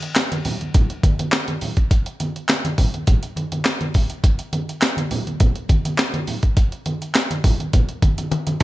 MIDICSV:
0, 0, Header, 1, 2, 480
1, 0, Start_track
1, 0, Tempo, 582524
1, 1572, Time_signature, 4, 2, 24, 8
1, 7111, End_track
2, 0, Start_track
2, 0, Title_t, "Drums"
2, 21, Note_on_c, 9, 42, 54
2, 103, Note_off_c, 9, 42, 0
2, 127, Note_on_c, 9, 39, 83
2, 132, Note_on_c, 9, 42, 90
2, 134, Note_on_c, 9, 38, 111
2, 138, Note_on_c, 9, 62, 30
2, 210, Note_off_c, 9, 39, 0
2, 214, Note_off_c, 9, 42, 0
2, 216, Note_off_c, 9, 38, 0
2, 220, Note_off_c, 9, 62, 0
2, 262, Note_on_c, 9, 42, 59
2, 262, Note_on_c, 9, 63, 70
2, 344, Note_off_c, 9, 42, 0
2, 344, Note_off_c, 9, 63, 0
2, 370, Note_on_c, 9, 46, 86
2, 375, Note_on_c, 9, 62, 37
2, 375, Note_on_c, 9, 64, 76
2, 452, Note_off_c, 9, 46, 0
2, 457, Note_off_c, 9, 62, 0
2, 457, Note_off_c, 9, 64, 0
2, 502, Note_on_c, 9, 63, 45
2, 503, Note_on_c, 9, 42, 47
2, 585, Note_off_c, 9, 42, 0
2, 585, Note_off_c, 9, 63, 0
2, 612, Note_on_c, 9, 42, 82
2, 614, Note_on_c, 9, 36, 112
2, 619, Note_on_c, 9, 64, 71
2, 695, Note_off_c, 9, 42, 0
2, 697, Note_off_c, 9, 36, 0
2, 701, Note_off_c, 9, 64, 0
2, 741, Note_on_c, 9, 42, 53
2, 823, Note_off_c, 9, 42, 0
2, 852, Note_on_c, 9, 62, 32
2, 852, Note_on_c, 9, 63, 67
2, 853, Note_on_c, 9, 36, 87
2, 855, Note_on_c, 9, 42, 67
2, 934, Note_off_c, 9, 62, 0
2, 934, Note_off_c, 9, 63, 0
2, 935, Note_off_c, 9, 36, 0
2, 937, Note_off_c, 9, 42, 0
2, 983, Note_on_c, 9, 42, 62
2, 983, Note_on_c, 9, 63, 65
2, 1066, Note_off_c, 9, 42, 0
2, 1066, Note_off_c, 9, 63, 0
2, 1088, Note_on_c, 9, 39, 88
2, 1093, Note_on_c, 9, 42, 86
2, 1095, Note_on_c, 9, 38, 107
2, 1170, Note_off_c, 9, 39, 0
2, 1176, Note_off_c, 9, 42, 0
2, 1177, Note_off_c, 9, 38, 0
2, 1218, Note_on_c, 9, 42, 55
2, 1221, Note_on_c, 9, 63, 70
2, 1301, Note_off_c, 9, 42, 0
2, 1303, Note_off_c, 9, 63, 0
2, 1329, Note_on_c, 9, 46, 77
2, 1336, Note_on_c, 9, 64, 70
2, 1412, Note_off_c, 9, 46, 0
2, 1418, Note_off_c, 9, 64, 0
2, 1456, Note_on_c, 9, 42, 59
2, 1458, Note_on_c, 9, 36, 82
2, 1538, Note_off_c, 9, 42, 0
2, 1541, Note_off_c, 9, 36, 0
2, 1573, Note_on_c, 9, 36, 105
2, 1574, Note_on_c, 9, 42, 89
2, 1655, Note_off_c, 9, 36, 0
2, 1656, Note_off_c, 9, 42, 0
2, 1698, Note_on_c, 9, 42, 56
2, 1781, Note_off_c, 9, 42, 0
2, 1813, Note_on_c, 9, 42, 73
2, 1815, Note_on_c, 9, 63, 67
2, 1895, Note_off_c, 9, 42, 0
2, 1898, Note_off_c, 9, 63, 0
2, 1945, Note_on_c, 9, 42, 56
2, 2027, Note_off_c, 9, 42, 0
2, 2049, Note_on_c, 9, 39, 87
2, 2054, Note_on_c, 9, 42, 85
2, 2056, Note_on_c, 9, 38, 105
2, 2058, Note_on_c, 9, 62, 31
2, 2131, Note_off_c, 9, 39, 0
2, 2136, Note_off_c, 9, 42, 0
2, 2138, Note_off_c, 9, 38, 0
2, 2141, Note_off_c, 9, 62, 0
2, 2180, Note_on_c, 9, 63, 70
2, 2182, Note_on_c, 9, 42, 60
2, 2263, Note_off_c, 9, 63, 0
2, 2264, Note_off_c, 9, 42, 0
2, 2291, Note_on_c, 9, 36, 91
2, 2291, Note_on_c, 9, 46, 87
2, 2294, Note_on_c, 9, 64, 81
2, 2373, Note_off_c, 9, 46, 0
2, 2374, Note_off_c, 9, 36, 0
2, 2376, Note_off_c, 9, 64, 0
2, 2422, Note_on_c, 9, 42, 45
2, 2424, Note_on_c, 9, 63, 48
2, 2505, Note_off_c, 9, 42, 0
2, 2506, Note_off_c, 9, 63, 0
2, 2531, Note_on_c, 9, 42, 86
2, 2534, Note_on_c, 9, 36, 111
2, 2537, Note_on_c, 9, 62, 37
2, 2537, Note_on_c, 9, 64, 75
2, 2614, Note_off_c, 9, 42, 0
2, 2616, Note_off_c, 9, 36, 0
2, 2619, Note_off_c, 9, 62, 0
2, 2619, Note_off_c, 9, 64, 0
2, 2659, Note_on_c, 9, 42, 52
2, 2741, Note_off_c, 9, 42, 0
2, 2771, Note_on_c, 9, 63, 68
2, 2776, Note_on_c, 9, 42, 68
2, 2854, Note_off_c, 9, 63, 0
2, 2859, Note_off_c, 9, 42, 0
2, 2900, Note_on_c, 9, 42, 58
2, 2903, Note_on_c, 9, 63, 65
2, 2982, Note_off_c, 9, 42, 0
2, 2985, Note_off_c, 9, 63, 0
2, 3006, Note_on_c, 9, 39, 77
2, 3011, Note_on_c, 9, 42, 75
2, 3013, Note_on_c, 9, 38, 105
2, 3088, Note_off_c, 9, 39, 0
2, 3094, Note_off_c, 9, 42, 0
2, 3095, Note_off_c, 9, 38, 0
2, 3136, Note_on_c, 9, 42, 57
2, 3138, Note_on_c, 9, 63, 73
2, 3219, Note_off_c, 9, 42, 0
2, 3221, Note_off_c, 9, 63, 0
2, 3249, Note_on_c, 9, 46, 76
2, 3251, Note_on_c, 9, 64, 65
2, 3254, Note_on_c, 9, 36, 96
2, 3331, Note_off_c, 9, 46, 0
2, 3334, Note_off_c, 9, 64, 0
2, 3336, Note_off_c, 9, 36, 0
2, 3376, Note_on_c, 9, 42, 54
2, 3458, Note_off_c, 9, 42, 0
2, 3489, Note_on_c, 9, 62, 39
2, 3491, Note_on_c, 9, 36, 119
2, 3491, Note_on_c, 9, 42, 88
2, 3572, Note_off_c, 9, 62, 0
2, 3574, Note_off_c, 9, 36, 0
2, 3574, Note_off_c, 9, 42, 0
2, 3616, Note_on_c, 9, 42, 56
2, 3698, Note_off_c, 9, 42, 0
2, 3731, Note_on_c, 9, 42, 72
2, 3731, Note_on_c, 9, 62, 30
2, 3731, Note_on_c, 9, 63, 71
2, 3813, Note_off_c, 9, 62, 0
2, 3813, Note_off_c, 9, 63, 0
2, 3814, Note_off_c, 9, 42, 0
2, 3866, Note_on_c, 9, 42, 52
2, 3948, Note_off_c, 9, 42, 0
2, 3968, Note_on_c, 9, 39, 86
2, 3973, Note_on_c, 9, 42, 91
2, 3975, Note_on_c, 9, 38, 109
2, 4051, Note_off_c, 9, 39, 0
2, 4056, Note_off_c, 9, 42, 0
2, 4058, Note_off_c, 9, 38, 0
2, 4095, Note_on_c, 9, 63, 71
2, 4103, Note_on_c, 9, 42, 60
2, 4177, Note_off_c, 9, 63, 0
2, 4185, Note_off_c, 9, 42, 0
2, 4210, Note_on_c, 9, 46, 79
2, 4212, Note_on_c, 9, 64, 84
2, 4292, Note_off_c, 9, 46, 0
2, 4294, Note_off_c, 9, 64, 0
2, 4341, Note_on_c, 9, 63, 48
2, 4343, Note_on_c, 9, 42, 47
2, 4423, Note_off_c, 9, 63, 0
2, 4426, Note_off_c, 9, 42, 0
2, 4449, Note_on_c, 9, 42, 84
2, 4453, Note_on_c, 9, 36, 106
2, 4453, Note_on_c, 9, 62, 37
2, 4453, Note_on_c, 9, 64, 79
2, 4532, Note_off_c, 9, 42, 0
2, 4536, Note_off_c, 9, 36, 0
2, 4536, Note_off_c, 9, 62, 0
2, 4536, Note_off_c, 9, 64, 0
2, 4577, Note_on_c, 9, 42, 49
2, 4660, Note_off_c, 9, 42, 0
2, 4688, Note_on_c, 9, 63, 62
2, 4692, Note_on_c, 9, 36, 85
2, 4694, Note_on_c, 9, 42, 71
2, 4770, Note_off_c, 9, 63, 0
2, 4774, Note_off_c, 9, 36, 0
2, 4776, Note_off_c, 9, 42, 0
2, 4821, Note_on_c, 9, 63, 65
2, 4822, Note_on_c, 9, 42, 65
2, 4903, Note_off_c, 9, 63, 0
2, 4904, Note_off_c, 9, 42, 0
2, 4929, Note_on_c, 9, 39, 79
2, 4934, Note_on_c, 9, 42, 85
2, 4936, Note_on_c, 9, 38, 108
2, 5011, Note_off_c, 9, 39, 0
2, 5017, Note_off_c, 9, 42, 0
2, 5018, Note_off_c, 9, 38, 0
2, 5057, Note_on_c, 9, 63, 75
2, 5058, Note_on_c, 9, 42, 55
2, 5140, Note_off_c, 9, 63, 0
2, 5141, Note_off_c, 9, 42, 0
2, 5170, Note_on_c, 9, 46, 83
2, 5174, Note_on_c, 9, 64, 68
2, 5252, Note_off_c, 9, 46, 0
2, 5256, Note_off_c, 9, 64, 0
2, 5296, Note_on_c, 9, 42, 59
2, 5298, Note_on_c, 9, 36, 87
2, 5378, Note_off_c, 9, 42, 0
2, 5380, Note_off_c, 9, 36, 0
2, 5411, Note_on_c, 9, 42, 86
2, 5412, Note_on_c, 9, 36, 112
2, 5494, Note_off_c, 9, 42, 0
2, 5495, Note_off_c, 9, 36, 0
2, 5538, Note_on_c, 9, 42, 54
2, 5621, Note_off_c, 9, 42, 0
2, 5651, Note_on_c, 9, 42, 73
2, 5652, Note_on_c, 9, 62, 31
2, 5652, Note_on_c, 9, 63, 64
2, 5733, Note_off_c, 9, 42, 0
2, 5734, Note_off_c, 9, 62, 0
2, 5734, Note_off_c, 9, 63, 0
2, 5783, Note_on_c, 9, 42, 53
2, 5865, Note_off_c, 9, 42, 0
2, 5888, Note_on_c, 9, 39, 92
2, 5893, Note_on_c, 9, 42, 92
2, 5895, Note_on_c, 9, 38, 106
2, 5971, Note_off_c, 9, 39, 0
2, 5976, Note_off_c, 9, 42, 0
2, 5978, Note_off_c, 9, 38, 0
2, 6020, Note_on_c, 9, 63, 67
2, 6021, Note_on_c, 9, 42, 63
2, 6102, Note_off_c, 9, 63, 0
2, 6104, Note_off_c, 9, 42, 0
2, 6131, Note_on_c, 9, 36, 100
2, 6131, Note_on_c, 9, 46, 87
2, 6132, Note_on_c, 9, 62, 35
2, 6132, Note_on_c, 9, 64, 86
2, 6213, Note_off_c, 9, 46, 0
2, 6214, Note_off_c, 9, 36, 0
2, 6214, Note_off_c, 9, 62, 0
2, 6214, Note_off_c, 9, 64, 0
2, 6260, Note_on_c, 9, 63, 48
2, 6264, Note_on_c, 9, 42, 46
2, 6343, Note_off_c, 9, 63, 0
2, 6346, Note_off_c, 9, 42, 0
2, 6372, Note_on_c, 9, 42, 87
2, 6374, Note_on_c, 9, 36, 107
2, 6375, Note_on_c, 9, 64, 78
2, 6455, Note_off_c, 9, 42, 0
2, 6457, Note_off_c, 9, 36, 0
2, 6458, Note_off_c, 9, 64, 0
2, 6498, Note_on_c, 9, 42, 54
2, 6581, Note_off_c, 9, 42, 0
2, 6610, Note_on_c, 9, 62, 29
2, 6610, Note_on_c, 9, 63, 64
2, 6612, Note_on_c, 9, 36, 90
2, 6613, Note_on_c, 9, 42, 68
2, 6693, Note_off_c, 9, 62, 0
2, 6693, Note_off_c, 9, 63, 0
2, 6694, Note_off_c, 9, 36, 0
2, 6695, Note_off_c, 9, 42, 0
2, 6740, Note_on_c, 9, 42, 63
2, 6742, Note_on_c, 9, 63, 65
2, 6822, Note_off_c, 9, 42, 0
2, 6825, Note_off_c, 9, 63, 0
2, 6851, Note_on_c, 9, 48, 51
2, 6853, Note_on_c, 9, 42, 77
2, 6934, Note_off_c, 9, 48, 0
2, 6935, Note_off_c, 9, 42, 0
2, 6977, Note_on_c, 9, 42, 59
2, 6979, Note_on_c, 9, 63, 74
2, 7059, Note_off_c, 9, 42, 0
2, 7062, Note_off_c, 9, 63, 0
2, 7111, End_track
0, 0, End_of_file